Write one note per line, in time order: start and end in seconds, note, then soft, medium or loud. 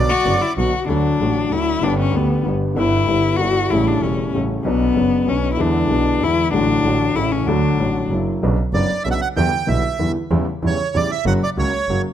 0.00 0.53 D5 medium
0.09 0.43 F#4 loud
0.25 0.38 F#1 medium
0.25 0.38 F#2 medium
0.25 0.38 D3 soft
0.25 0.38 F#3 soft
0.25 0.38 B3 soft
0.25 0.39 F#4 soft
0.42 0.57 E4 medium
0.57 0.70 B1 medium
0.57 0.70 B2 soft
0.57 0.70 D3 soft
0.57 0.70 F#3 soft
0.57 0.70 B3 soft
0.57 0.70 F#4 soft
0.57 0.87 F#4 medium
0.86 1.18 D2 medium
0.86 1.18 D3 medium
0.86 1.18 F#3 soft
0.86 1.19 A3 soft
0.86 1.53 D4 medium
0.90 1.19 F#4 medium
1.19 1.50 A1 medium
1.19 1.50 A1 soft
1.19 1.50 A2 soft
1.19 1.48 D3 soft
1.19 1.50 F#3 soft
1.19 1.50 A3 soft
1.19 1.51 F#4 soft
1.51 1.81 D2 soft
1.51 1.82 D2 soft
1.51 1.80 D3 soft
1.51 1.81 F#3 soft
1.51 1.82 A3 soft
1.51 1.85 E4 loud
1.51 1.82 F#4 soft
1.81 2.12 G1 medium
1.81 2.12 G2 medium
1.81 2.11 D3 medium
1.81 2.12 G3 soft
1.81 2.13 B3 soft
1.81 1.99 D4 medium
1.81 2.13 G4 medium
1.99 2.18 C#4 medium
2.12 2.43 D2 medium
2.12 2.44 D2 soft
2.12 2.42 D3 soft
2.12 2.43 G3 soft
2.12 2.44 B3 soft
2.12 2.46 B3 medium
2.12 2.45 G4 soft
2.44 2.75 G1 soft
2.44 2.75 G1 medium
2.44 2.75 G2 soft
2.44 2.73 D3 soft
2.44 2.75 G3 soft
2.44 2.75 B3 soft
2.44 2.76 G4 soft
2.75 3.06 G1 medium
2.75 3.06 G2 medium
2.75 3.05 D3 medium
2.75 3.06 G3 soft
2.75 3.06 B3 medium
2.75 3.38 E4 loud
2.79 3.07 E4 medium
3.06 3.37 G1 soft
3.06 3.38 G1 medium
3.06 3.37 G2 soft
3.06 3.37 D3 soft
3.06 3.37 G3 soft
3.06 3.38 B3 soft
3.06 3.39 E4 soft
3.36 3.69 G1 medium
3.36 3.69 G1 soft
3.36 3.68 D3 soft
3.36 3.69 G3 soft
3.36 3.72 F#4 loud
3.40 3.69 G2 soft
3.40 3.70 B3 soft
3.40 3.70 E4 soft
3.70 4.01 A1 medium
3.70 4.01 A2 medium
3.70 3.99 C#3 medium
3.70 4.00 G3 soft
3.70 4.01 A3 soft
3.70 3.89 E4 medium
3.70 4.02 E4 medium
3.88 4.04 D4 medium
4.00 4.32 E1 soft
4.00 4.32 E1 medium
4.00 4.32 E2 soft
4.00 4.31 C#3 soft
4.00 4.32 G3 soft
4.00 4.33 A3 soft
4.00 4.34 C#4 medium
4.00 4.33 E4 soft
4.32 4.64 A1 soft
4.32 4.64 A2 soft
4.32 4.63 C#3 soft
4.32 4.64 G3 soft
4.32 4.64 A3 soft
4.36 4.65 E4 soft
4.63 4.95 B1 medium
4.63 4.95 B2 medium
4.63 4.94 F#3 soft
4.63 5.30 B3 medium
4.63 4.95 B3 medium
4.63 4.93 C#4 soft
4.63 4.96 D4 medium
4.94 5.26 F#1 soft
4.94 5.27 F#1 medium
4.94 5.26 F#2 soft
4.94 5.26 F#3 soft
4.94 5.27 B3 soft
4.94 5.25 C#4 soft
4.94 5.27 D4 soft
5.26 5.58 B1 soft
5.26 5.58 B2 soft
5.26 5.57 F#3 soft
5.26 5.58 B3 soft
5.26 5.57 C#4 soft
5.26 5.52 C#4 medium
5.30 5.59 D4 soft
5.53 5.62 E4 medium
5.57 5.89 E2 medium
5.57 5.87 D3 medium
5.57 5.89 E3 medium
5.57 5.89 G#3 soft
5.57 5.90 B3 soft
5.57 6.25 D4 medium
5.61 5.90 E4 medium
5.89 6.20 B1 medium
5.89 6.20 B1 soft
5.89 6.20 B2 soft
5.89 6.19 D3 soft
5.89 6.20 G#3 soft
5.89 6.21 B3 soft
5.89 6.21 E4 soft
6.21 6.51 E2 medium
6.21 6.52 E2 soft
6.21 6.50 D3 soft
6.21 6.52 E3 soft
6.21 6.52 G#3 soft
6.21 6.52 B3 soft
6.21 6.53 E4 loud
6.25 6.53 E4 soft
6.51 6.83 A1 medium
6.51 6.83 A2 medium
6.51 6.81 D3 medium
6.51 6.82 F#3 soft
6.51 6.83 A3 soft
6.51 7.17 D4 loud
6.56 6.84 F#4 medium
6.82 7.14 A1 medium
6.82 7.14 A1 soft
6.82 7.14 A2 soft
6.82 7.13 D3 soft
6.82 7.14 F#3 soft
6.82 7.14 A3 soft
6.86 7.15 F#4 soft
7.14 7.45 A1 medium
7.14 7.46 A1 medium
7.14 7.45 A2 soft
7.14 7.45 C#3 soft
7.14 7.45 E3 soft
7.14 7.46 A3 soft
7.14 7.33 E4 medium
7.14 7.46 E4 soft
7.32 7.49 C#4 medium
7.46 7.77 D2 medium
7.46 7.77 D3 medium
7.46 7.77 F#3 medium
7.46 7.78 A3 medium
7.46 8.10 D4 medium
7.50 7.78 F#4 medium
7.78 8.08 A1 medium
7.78 8.09 A1 soft
7.78 8.09 A2 soft
7.78 8.08 D3 soft
7.78 8.09 F#3 soft
7.78 8.09 A3 soft
7.78 8.10 F#4 soft
8.09 8.40 F#1 soft
8.09 8.40 F#2 soft
8.09 8.40 C#3 soft
8.09 8.41 F#3 soft
8.09 8.41 A#3 soft
8.09 8.42 E4 soft
8.42 8.55 B1 medium
8.42 8.56 B1 medium
8.42 8.56 B2 medium
8.42 8.55 C#3 medium
8.42 8.55 F#3 medium
8.42 8.56 B3 medium
8.42 8.56 D4 medium
8.73 8.87 F#1 medium
8.73 8.87 F#1 soft
8.73 8.87 F#2 medium
8.73 8.87 C#3 soft
8.73 8.87 F#3 soft
8.73 8.87 B3 soft
8.73 8.87 D4 medium
8.73 9.03 D5 medium
9.04 9.19 B1 medium
9.04 9.19 B1 soft
9.04 9.19 B2 medium
9.04 9.18 C#3 soft
9.04 9.19 F#3 soft
9.04 9.19 B3 soft
9.04 9.19 D4 soft
9.04 9.09 E5 medium
9.11 9.21 E5 medium
9.11 9.14 F#5 medium
9.21 9.28 F#5 medium
9.36 9.50 E2 medium
9.36 9.50 D3 medium
9.36 9.50 E3 medium
9.36 9.50 G3 medium
9.36 9.50 B3 medium
9.36 9.50 E4 medium
9.36 9.69 G5 medium
9.67 9.80 B1 medium
9.67 9.82 B1 medium
9.67 9.81 B2 medium
9.67 9.81 D3 soft
9.67 9.81 G3 soft
9.67 9.81 B3 soft
9.67 9.81 E4 medium
9.67 10.12 E5 medium
9.99 10.12 E2 medium
9.99 10.13 E2 soft
9.99 10.12 D3 soft
9.99 10.12 E3 medium
9.99 10.12 G3 soft
9.99 10.13 B3 soft
9.99 10.13 E4 soft
10.30 10.44 E2 medium
10.30 10.44 C#3 medium
10.30 10.44 E3 medium
10.30 10.44 G3 medium
10.30 10.44 E4 medium
10.62 10.75 E2 medium
10.62 10.76 E2 medium
10.62 10.75 C#3 soft
10.62 10.75 E3 medium
10.62 10.75 G3 soft
10.62 10.75 E4 medium
10.67 10.97 C#5 medium
10.94 11.07 E2 soft
10.94 11.07 E2 medium
10.94 11.07 C#3 soft
10.94 11.07 E3 medium
10.94 11.07 G3 soft
10.94 11.07 E4 soft
10.94 11.11 D5 medium
11.11 11.25 E5 medium
11.25 11.39 F#1 medium
11.25 11.38 F#2 medium
11.25 11.38 C#3 medium
11.25 11.38 F#3 medium
11.25 11.38 A#3 medium
11.25 11.39 F#4 medium
11.25 11.34 F#5 medium
11.43 11.50 D5 medium
11.57 11.70 C#2 medium
11.57 11.70 C#3 soft
11.57 11.70 F#3 soft
11.57 11.70 A#3 soft
11.57 11.70 F#4 soft
11.57 12.02 C#5 medium
11.89 12.02 F#1 soft
11.89 12.02 F#2 medium
11.89 12.02 C#3 soft
11.89 12.02 F#3 medium
11.89 12.02 A#3 soft
11.89 12.02 F#4 soft